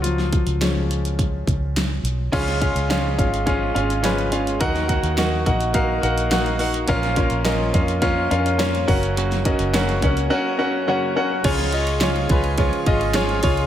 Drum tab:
CC |----------------|x---------------|----------------|----------------|
RD |----------------|----------------|----------------|----------------|
HH |x-xxx-xxx-x-x-x-|xxxxx-xxx-xxxxxx|xxxxx-xxx-xxxxox|xxxxx-xxx-xxxxox|
SD |-o--o-------o---|-o--o-------o---|-o--o-------o---|-o--o-------o---|
BD |--o-----o-o-----|o-o---o-o-------|o-o---o-o-------|o-o---o-o-----o-|

CC |----------------|x---------------|
RD |----------------|xxxxxxxxxxxxxxxx|
HH |xxxxxxxx--------|--------------o-|
SD |-o--o-----------|-o--o-------o---|
BD |--o---o---------|o-----o-o-o---o-|